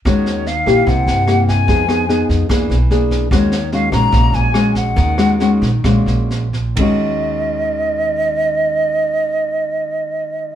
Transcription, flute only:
\new Staff \with { instrumentName = "Flute" } { \time 4/4 \key ees \minor \tempo 4 = 140 des''4 f''4 ges''4. aes''8~ | aes''4. r2 r8 | des''4 f''8 bes''4 aes''4 ges''8~ | ges''4. r2 r8 |
ees''1~ | ees''1 | }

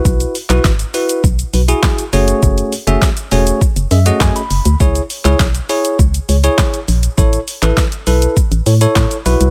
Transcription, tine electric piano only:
\new Staff \with { instrumentName = "Tine electric piano" } { \time 4/4 \key a \lydian \tempo 4 = 101 << { r1 | r2 r8 e''16 fis''16 gis''16 b''8. | r1 | r1 | } \\ { <e' fis' b'>8 r16 <e' fis' b'>16 r8 <e' fis' b'>8 r8 <fis' b'>16 <e' fis' gis'>8 r16 <a cis' fis' gis' cis''>8~ | <a cis' fis' gis' cis''>8 r16 <a cis' fis' gis' e''>16 r8 <a cis' fis' gis' cis''>8 r8 <gis' dis''>16 <a cis' fis' gis' dis''>8 r8. | <e' gis' cis''>16 r8 <e' gis' cis''>16 r8 <e' gis' cis''>8 r8 <gis' cis''>16 <e' gis' cis''>8 r8. | <e' a' cis''>16 r8 <e' a' b'>16 r8 <e' a' b'>8 r8 <a' cis''>16 <e' a' cis''>8 r16 <e' fis' b'>8 | } >> }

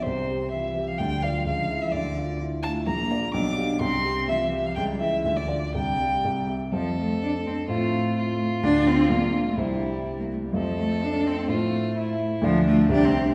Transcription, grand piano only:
\new Staff \with { instrumentName = "Grand piano" } { \time 2/4 \key d \dorian \tempo 4 = 127 c,8 g'8 f'8 g'8 | d,8 <f' d''>8 des,8 <fes' fes''>8 | d,8 f'8 e'8 f'8 | \key f \major bes,,8 <f' d''>8 b,,8 <g' f''>8 |
c,8 g'8 f'8 g'8 | cis,8 <e' e''>8 d,8 <f' d''>8 | c,8 <g' f''>8 c,8 <g' e''>8 | <f, c' a' f''>2 |
<a, c' f' f''>2 | <d, d' f' f''>4 <bes,, d' f' f''>4 | <c, c' e' c''>2 | <f, a f' c''>2 |
<a, a f' c''>2 | <d, a f' d''>4 <c, c' g' e''>4 | }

